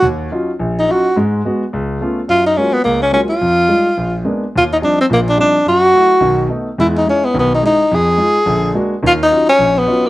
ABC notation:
X:1
M:4/4
L:1/8
Q:"Swing" 1/4=214
K:Ebm
V:1 name="Tenor saxophone"
z4 z E G2 | z8 | F E D C B, D D F- | F6 z2 |
F E =D =C B, D D2 | G6 z2 | =E ^D _D =B, B, ^D D2 | A6 z2 |
F E2 D2 C2 B, |]
V:2 name="Grand piano" clef=bass
E,,2 [G,DEF] z B,,,2 [G,DEF] z | [A,,A,]2 [A,CG] z D,,2 [=A,CDF] z | G,,2 [G,A,B,F] z D,,2 [G,A,B,F] z | F,,2 [=G,A,EF] z B,,,2 [A,B,C=D] z |
E,,2 [F,=G,=CE] z [B,,,B,,]2 [F,G,CE] z | G,,2 [G,=A,_F] z [=B,,,^D,]2 [A,=B,^D] z | [=E,,^G,]2 [G,^D=E] z [=B,,,^D,]2 [G,DE] z | F,,2 [A,EF] z [B,,,=D,]2 [A,B,=D^F] z |
[E,,E,]2 [G,DEF] z B,,,2 [G,DEF] z |]